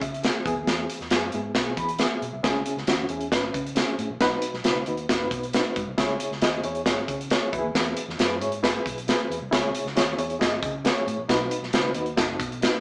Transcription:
Already playing: C#4 E4
0.01 C#3 E5, kick, closed hi-hat
0.14 closed hi-hat
0.23 G#4, snare, closed hi-hat
0.45 E2 E3 B3 E4 G#4, kick, closed hi-hat
0.56 D#2
0.67 E2, snare, closed hi-hat
0.90 closed hi-hat
1.00 E2, snare
1.10 F#2 B3 E4 G#4, snare, closed hi-hat
1.32 G#2 B3 E4 G#4, closed hi-hat
1.55 B3 E4 F#4, kick, snare, closed hi-hat
1.61 G#4
1.77 E3 B5, kick, closed hi-hat
1.89 closed hi-hat
1.99 B3 E4 G#4 E5, snare, closed hi-hat
2.22 B2, closed hi-hat
2.33 C2
2.43 C#2 C#3 C#4 E4 G#4, kick, snare, closed hi-hat
2.66 closed hi-hat
2.77 C#2, snare
2.87 D#2 C#4 E4 F#4, snare, closed hi-hat
3.09 E2 C#4 E4 G#4, closed hi-hat
3.21 closed hi-hat
3.32 G#1 C#4 E4 B4, kick, snare, closed hi-hat
3.54 C#3, kick, closed hi-hat
3.67 closed hi-hat
3.75 C#4 D#4 G#4, snare, closed hi-hat
3.82 E4
3.98 A2, closed hi-hat
4.10 A#1
4.20 B1 B2 D#4 F#4 B4, kick, snare, closed hi-hat
4.42 closed hi-hat
4.54 B1, snare
4.64 C#2 D#4 F#4 B4, snare, closed hi-hat
4.86 D#2 D#4 F#4 B4, closed hi-hat
4.97 closed hi-hat
5.09 F#1 D#4 F#4 A#4, kick, snare, closed hi-hat
5.16 B4
5.31 B2, kick, closed hi-hat
5.43 closed hi-hat
5.53 D4 F#4 B4, snare, closed hi-hat
5.59 D#4
5.76 G#2, kick, closed hi-hat
5.87 C2
5.98 C#2 C#3 E4 G#4 C#5, kick, snare, closed hi-hat
6.20 closed hi-hat
6.31 C#2, snare
6.42 D#2 E4 G#4 D#5, snare, closed hi-hat
6.63 E2 E4 G#4 C#5, closed hi-hat
6.75 closed hi-hat
6.86 G#1 D#4 G#4 C#5, kick, snare, closed hi-hat
6.91 E4
7.08 C#3, kick, closed hi-hat
7.21 closed hi-hat
7.30 E4 G#4 C#5, snare, closed hi-hat
7.53 E2 E3 E4 F#4 B4, kick, closed hi-hat
7.59 G#4
7.63 D#2
7.75 E2, snare, closed hi-hat
7.97 closed hi-hat
8.08 E2, snare
8.19 F#2 E4 G#4 B4, snare, closed hi-hat
8.41 G#2 E4 G#4 C#5, closed hi-hat
8.52 closed hi-hat
8.63 E4 G#4 B4, kick, snare, closed hi-hat
8.85 B1, kick, closed hi-hat
8.98 closed hi-hat
9.07 E4 G#4 B4, snare, closed hi-hat
9.30 E2, closed hi-hat
9.41 C2
9.51 C#2 C#3 E4 G#4 C#5, kick, snare, closed hi-hat
9.75 closed hi-hat
9.85 C#2, snare
9.95 D#2 E4 G#4 C#5, snare, closed hi-hat
10.17 E2 E4 G#4 C#5, closed hi-hat
10.30 closed hi-hat
10.39 G#1 E4 G#4 D#5, kick, snare, closed hi-hat
10.62 C#3, kick, closed hi-hat
10.84 E4 G#4 B4, snare, closed hi-hat
10.90 C#5
11.07 A2, closed hi-hat
11.18 A#1
11.29 B1 B2 D#4 F#4 B4, kick, snare, closed hi-hat
11.51 closed hi-hat
11.62 B1, snare
11.73 C#2 D#4 F#4 B4, snare, closed hi-hat
11.94 D#2 D#4 F#4 B4, closed hi-hat
12.06 closed hi-hat
12.17 F#1 D#4 F#4 A4, kick, snare, closed hi-hat
12.40 B2, kick, closed hi-hat
12.52 closed hi-hat
12.61 D#4 F#4 B4, snare, closed hi-hat

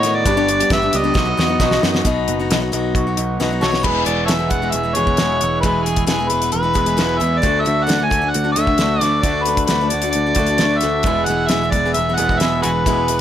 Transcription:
Already playing: A2 D#3 B4 C#5 D#5 F#5 D#6
0.03 D#3 B3 D#4 F#4, snare, closed hi-hat
0.15 D5
0.26 G1 G2 D3 G3 B3 D4 G4 D5 G5 D6, kick, closed hi-hat
0.37 G2 D3 G3 B3 D4 G4
0.49 G3 B3 D4 G4, closed hi-hat
0.60 G3 B3 D4 G4, closed hi-hat
0.70 G1 G3 B3 D4 G4 E5, kick, snare, closed hi-hat
0.82 G3 B3 D4 G4
0.92 C#2 G3 B3 D4 G4, closed hi-hat
0.97 D#5
1.04 G3 B3 D4 G4
1.13 B1 B2 F#3 B3 D#4 F#4 B4 D#5 F#5 D#6, kick, snare
1.25 B3 D#4 F#4
1.37 E2 F#3 B3 D#4 F#4, snare
1.48 B3 D#4 F#4
1.60 B1 B2 F#3 B3 D#4 F#4, kick, snare
1.71 snare
1.83 F#2 F#3 B3 D#4 F#4, snare
1.95 snare
2.05 B1 B2 F#3 B3 D#4 F#4, kick, closed hi-hat
2.28 F#1 B3, closed hi-hat
2.39 B3 D#4 F#4
2.51 B1 B2 F#3 B3 D#4 F#4, snare, closed hi-hat
2.60 B3 D#4 F#4
2.72 B1 F#3 B3 D#4 F#4, closed hi-hat
2.95 B1 F#4, kick, closed hi-hat
3.07 B3 D#4 F#4
3.17 B1 D#4, closed hi-hat
3.40 B1 B2 F#3 B3 D#4 F#4, snare
3.51 B3 D#4 F#4
3.61 B1 F#3 B3 D#4 F#4 A4 C#5, snare
3.71 B3 D#4 F#4, snare
3.83 E1 E2 B2 E3 G#3 B3 G#4 B4 G#5 E6, kick, crash
3.87 E5
4.05 E1 E3 G#3 B3 G#4 D5, closed hi-hat
4.26 E2 B2 E3 G#3 B3 A4 C#5 E5, snare, closed hi-hat
4.30 E1 G#4
4.39 E3 G#3 B3 G#4
4.50 E1 E3 G#3 B3 G#4 F#5, kick, closed hi-hat
4.62 E3 G#3 B3 G#4
4.72 E1 E3 G#3 B3 G#4 E5, closed hi-hat
4.83 E3 G#3 B3 G#4
4.95 E1 B2 E3 G#3 B3 G#4 C#5, closed hi-hat
4.99 E2
5.07 E3 G#3 B3 G#4, kick
5.17 E1 E2 B2 E3 G#3 B3 G#4, snare, closed hi-hat
5.41 E1 E3 G#3 B3 G#4, closed hi-hat
5.61 E1 E2 B2 E3 G#3 B3 G#4 B4, kick, closed hi-hat
5.83 E3 G#3 B3 G#4, closed hi-hat
5.88 G#4
5.96 kick, closed hi-hat
6.06 E1 E2 B2 E3 G#3 B3 G#4, snare, closed hi-hat
6.18 E3 G#3 B3 G#4
6.29 E1 E3 G#3 B3 G#4 B4, closed hi-hat
6.42 E3 G#3 B3 G#4, closed hi-hat
6.52 E1 B4, closed hi-hat
6.63 E3 G#3 B3 G#4
6.73 E1 E3 G#3 B3 G#4, kick, closed hi-hat
6.78 E2 B2
6.86 E3 G#3 B3 G#4, closed hi-hat
6.97 E1 E2 B2 E3 G#3 B3 G#4, snare, closed hi-hat
7.18 E2 E3 G#3 B3 G#4 E5, closed hi-hat
7.39 D3 D5
7.43 D2 A3 D4 F#4 A4 D5 F#5 D6, kick, closed hi-hat
7.61 D3 E5
7.66 D2 A3 D4 F#4, closed hi-hat
7.84 D3 A3 F#5
7.88 D2 D4 F#4, snare, closed hi-hat
7.98 A3 D4 F#4
8.05 G#5
8.10 D2 D3 A3 D4 F#4, kick, closed hi-hat
8.21 A3 D4 F#4
8.30 F#5
8.34 D2, closed hi-hat
8.44 A3 D4 F#4
8.52 E5
8.56 D2 D3 A3 D4 F#4, closed hi-hat
8.67 A3 D4 F#4, kick
8.78 D2 D3 A3 D4 F#4, snare, closed hi-hat
9.01 D2 D3 A3 D4 F#4 D5, snare, closed hi-hat
9.22 D2 D3 A3 D4 F#4 D5, kick, closed hi-hat
9.43 D3 B4, closed hi-hat
9.48 A3 D4 F#4
9.57 kick, closed hi-hat
9.66 D3 B4, snare, closed hi-hat
9.70 D2 A3 D4 F#4
9.81 A3 D4 F#4
9.89 D3 A3 D4 D5, closed hi-hat
9.93 D2 F#4
10.02 A3 D4 F#4, closed hi-hat
10.11 D5, closed hi-hat
10.15 D2
10.26 A3 D4 F#4
10.35 D2 D3 A3, kick, closed hi-hat
10.39 D4 F#4
10.46 D4 F#4, closed hi-hat
10.51 A3
10.58 D2 D3 A3 D4 F#4, snare, closed hi-hat
10.78 E5, closed hi-hat
10.82 D2 D3 A3 D4 F#4, snare
11.03 E1 E2 B2 E3 G#3 B3 G#4 B4 E5 G#5 E6, kick, closed hi-hat
11.25 E1 E3 G#3 F#5, closed hi-hat
11.30 B3 G#4
11.48 E1 E2 B2 E3 G#3 B3 G#4 E5, snare, closed hi-hat
11.63 G#3 B3 G#4
11.71 E1 E3 D5, kick, closed hi-hat
11.75 G#3 B3 G#4
11.85 E3 G#3 B3 G#4
11.94 E1 E3 G#3 E5, closed hi-hat
11.98 B3 G#4
12.09 E3 G#3 B3 G#4
12.15 E3 G#3 F#5, closed hi-hat
12.20 E1 E2 B2 B3 G#4
12.29 E3 G#3 B3 G#4, kick
12.40 E1 E2 B2 E3 G#3 B3 G#4 E5, snare, closed hi-hat
12.62 E1 E3 G#3 B3 F#4 G#4 B4, closed hi-hat
12.86 E1 E2 B2 E3 G#3 B3 G#4 D6, kick, closed hi-hat
13.08 E3 G#3 B3 G#4, closed hi-hat

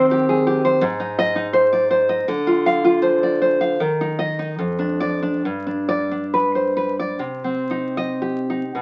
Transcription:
Already playing: D#3 C4
0.11 G4
0.29 G#4
0.47 G4
0.65 C5
0.81 G#2
1.00 D#4
1.19 D#5
1.36 D#4
1.53 C5
1.73 D5
1.91 C5
2.09 D#5
2.28 D3
2.47 F4
2.66 F5
2.84 F4
3.02 C5
3.23 D5
3.42 C5
3.61 F5
3.80 D#3
4.01 D#4
4.19 D#5
4.39 D#4
4.58 F2
4.79 D4
5.00 D5
5.23 D4
5.45 G2
5.67 D4
5.89 D5
6.11 D4
6.34 B4
6.55 C5
6.77 B4
6.99 D5
7.19 C3
7.44 C4
7.71 D#4
7.97 D#5
8.22 G4
8.50 D#4
8.75 B2

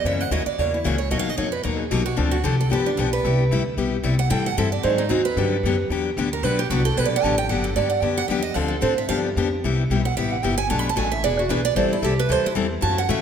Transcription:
0.04 F#2 C#3 E3 A#3 C#4 F#4 E5
0.21 F#5
0.31 D#2 C#3 E3 A#3 C#4 F#4 D#5
0.46 D5, muted upright bass stroke
0.58 E2 C#3 E3 A#3 C#4 F#4 C#5
0.74 E4
0.84 C#2 C#3 E3 A#3 C#4 F#4 G#4
0.98 C#5
1.10 D#2 B2 F#3 A#3 D#4 F#4 D#5
1.19 F5
1.27 D#5, muted upright bass stroke
1.37 F2 B2 F#3 A#3 D#4 F#4 C#5
1.52 B4
1.63 D#2 B2 F#3 A#3 D#4 F#4 A#4
1.79 G#4
1.91 B1 B2 F#3 A#3 D#4 F#4 G4
2.06 F#4
2.16 D2 D3 F3 C4 D4 F4 A4
2.31 F#4
2.43 C2 D3 F3 C4 D4 G4 A4
2.61 A4
2.70 G1 D3 F3 B3 D4 G4 B4
2.86 D4
2.97 B1 D3 F3 B3 D4 F4 G4
3.13 B4
3.24 C2 C3 G3 B3 E4 G4
3.51 D2 C3 G3 B3 E4 G4
3.77 B1 C3 G3 B3 E4 G4
4.03 C2 C3 G3 B3 E4 G4
4.19 F#5
4.30 A2 E3 G3 C4 E4 A4 G5
4.46 F#5
4.57 G2 E3 G3 C4 E4 A4 E5
4.72 D5
4.83 G#2 D#3 F#3 C4 D#4 G#4 C5
4.98 D#4
5.09 D#2 D#3 F#3 C4 D#4 F#4 G#4
5.25 B4
5.36 G2 D3 F#3 B3 D4 G4
5.63 F#2 D3 F#3 B3 D4 G4
5.89 E2 D3 F#3 B3 D4 G4
6.17 D2 D3 F#3 B3 D4 G4
6.33 A#4
6.43 B1 D3 F#3 B3 D4 G4 B4
6.59 G4
6.70 C2 D3 F#3 B3 D4 F#4 G4
6.85 A4
6.97 B1 D3 F#3 B3 D4 G4 B4
7.05 D5
7.16 F#5
7.23 A1 D3 F#3 B3 D4 G4 A5
7.38 G5
7.49 G1 D3 F#3 B3 D4 G4 F#5
7.64 A4
7.76 G2 D3 F#3 B3 D4 G4 D5
7.90 F#5
8.01 F#2 D3 F#3 B3 D4 G4 G5
8.18 F#5
8.28 E2 D3 F#3 B3 D4 G4 E5
8.42 D#5
8.54 D2 D3 F3 C4 D4 A4 F5
8.68 A4
8.81 A2 D3 F3 C4 D4 A4 C5
8.98 E5
9.09 G2 D3 F3 B3 D4 G4 F5
9.36 F2 D3 F3 B3 D4 G4
9.64 C2 C3 G3 B3 E4 G4
9.90 B1 C3 G3 B3 E4 G4
10.05 F#5
10.17 A1 C3 G3 B3 E4 G4 E5
10.31 F#5
10.43 G1 C3 G3 B3 E4 G4 G5
10.58 G#5
10.70 B1 B2 F#3 A3 D4 F#4 A5
10.79 B5
10.89 A5
10.96 A1 B2 F#3 A3 D4 F#4 G#5
11.12 E5
11.23 E1 E3 B3 D4 G#4 D5
11.39 F#4
11.49 B1 E3 B3 D4 G#4 B4
11.65 D5
11.76 A1 E3 G3 C4 E4 A4 C5
11.92 E4, muted upright bass stroke
12.02 C2 E3 G3 C4 E4 G4 A4
12.19 B4
12.29 D2 E3 G3 C4 E4 A4 C5
12.45 E4, muted upright bass stroke
12.55 E2 E3 G3 C4 E4 A4
12.81 F#2 C#3 E3 A3 C#4 F#4 A5
12.98 F#5
13.09 A2 C#3 E3 A3 C#4 F#4 E5

